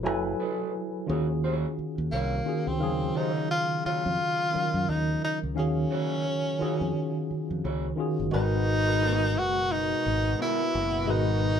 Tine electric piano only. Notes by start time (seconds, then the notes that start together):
Already playing: F#3 E4 G#4 A4 B4
0.03 F#3 E4 A4 B4 G#5
1.06 D#3 C#4 F4 F#4 G#4
2.44 D#3 C#4 F4 F#4 G#4
2.79 C#3 D#3 F#3 F5
2.83 G#4
4.51 D#3 F#3 C#4 F4 A#4
5.55 D#3 C#4 F#4 F5
5.59 G#4
6.59 D#3 C#4 F4 F#4 G#4
7.96 D#3 C#4 F4 F#4 G#4
8.31 G#3 F#4 A#4 B4
8.85 G#3 F#4 A#4
8.89 B4
11.07 G#3 F#4 A#4 B4